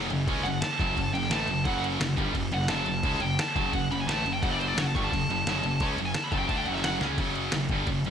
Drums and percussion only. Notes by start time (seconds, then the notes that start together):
0.10 crash
0.28 kick, crash
0.38 snare
0.46 crash
0.62 snare, crash
0.80 kick, crash
0.97 kick, crash
1.15 crash
1.23 snare
1.31 snare, crash
1.48 crash
1.65 kick, crash
1.84 crash
2.01 snare, crash
2.17 kick, crash
2.35 kick, crash
2.52 crash
2.61 snare
2.68 snare, crash
2.86 crash
3.03 kick, crash
3.13 snare
3.20 crash
3.39 snare, crash
3.56 kick, crash
3.73 kick, crash
3.92 crash
4.09 snare, crash
4.26 crash
4.43 kick, crash
4.61 crash
4.78 snare, crash
4.95 kick, crash
5.12 kick, crash
5.30 crash
5.47 snare, crash
5.63 crash
5.80 kick, crash
5.98 crash
6.14 snare, crash
6.32 kick, crash
6.49 kick, crash
6.66 crash
6.75 snare
6.84 snare, crash
7.01 snare
7.18 kick, crash
7.35 crash
7.52 snare, crash
7.69 kick, crash
7.87 kick, crash
8.05 crash